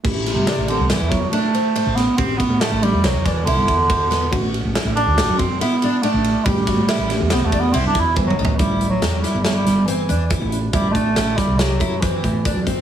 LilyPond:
<<
  \new Staff \with { instrumentName = "Twelve-string acoustic guitar" } { \time 5/4 \key a \dorian \tempo 4 = 140 e'4 d'8 c'8 e'4 d'8 c'8 c'4 | g'8 fis'8 e'4 c'8 d'8 e'4 c'8 b8 | fis'4 e'8 d'8 fis'4 e'8 d'8 d'4 | g'8 fis'8 e'4 c'8 d'8 e'4 c'8 b8 |
e'4 g'8 e'8 e'4 c'8 d'8 e'4 | e'8 d'8 e'4 g'8 e'8 c'4 d'8 c'8 | }
  \new Staff \with { instrumentName = "Tine electric piano" } { \time 5/4 \key a \dorian <e a d' g'>4. <e a d' g'>8 r2. | <e a d' g'>8 r4 <e a d' g'>8 r2. | <e a d' fis'>8 r1 r8 | <e a d' g'>4. <e a d' g'>4. r2 |
r1 r4 | r1 r4 | }
  \new Staff \with { instrumentName = "Bass clarinet" } { \clef bass \time 5/4 \key a \dorian r8 c4 d8 e8 fis8 a4. b8 | c'8 b8 a8 g8 fis8 e8 d2~ | d8 r4 d'4 c'8 b4 a4 | g4. r8 \tuplet 3/2 { b8 a8 b8 c'8 d'8 e'8 } e16 fis8. |
g8. fis8. g8 fis16 g8. e4. r8 | g8 a4 g8 fis4 e4. r8 | }
  \new Staff \with { instrumentName = "Fretless electric bass" } { \clef bass \time 5/4 \key a \dorian a,,8. g,,16 r16 a,,8 c,16 g,,16 e,8 r4. a,,8 r16 | a,,8. a,8 a,,8 e,16 c,16 e,8. c,16 g,,16 e,4. | a,,8. a,,16 r16 a,,8 d,16 a,,16 fis,8 r4. a,,8 r16 | a,,8. a,8 a,,8 e,16 c,16 e,8. c,16 g,,16 e,8 g,,8 a,,8 |
a,,4 e,8 r16 g,,8. g,,4 e,8. a,,8. | a,,4 a,,8 r16 c,8. fis,4 a,8. fis,8 r16 | }
  \new DrumStaff \with { instrumentName = "Drums" } \drummode { \time 5/4 <cymc bd>8 <cymr sn>8 <cymr sn>8 cymr8 <cymr sn>8 <bd cymr>8 cymr8 cymr8 cymr8 <cymr sn>8 | <bd cymr>8 <bd cymr>8 <cymr sn>8 cymr8 <cymr sn>8 <bd cymr sn>8 cymr8 <bd cymr>8 <bd cymr>8 <cymr sn>8 | <bd cymr>8 cymr8 <cymr sn>8 cymr8 <cymr sn>8 <bd cymr>8 <cymr sn>8 cymr8 cymr8 cymr8 | <bd cymr>8 <bd cymr sn>8 <cymr sn>8 <cymr sn>8 <cymr sn>8 <bd cymr>8 cymr8 <bd cymr sn>8 \tuplet 3/2 { <bd tommh>8 toml8 tomfh8 } |
<hh bd>8 hh8 <hh sn>8 <hh sn>8 <hh sn>8 <hh sn>8 hh8 hh8 <hh bd>8 hh8 | <hh bd>8 <hh bd>8 <hh sn>8 <hh bd sn>8 <hh sn>8 <hh bd>8 <hh bd sn>8 <hh bd>8 <hh bd>8 <hh bd>8 | }
>>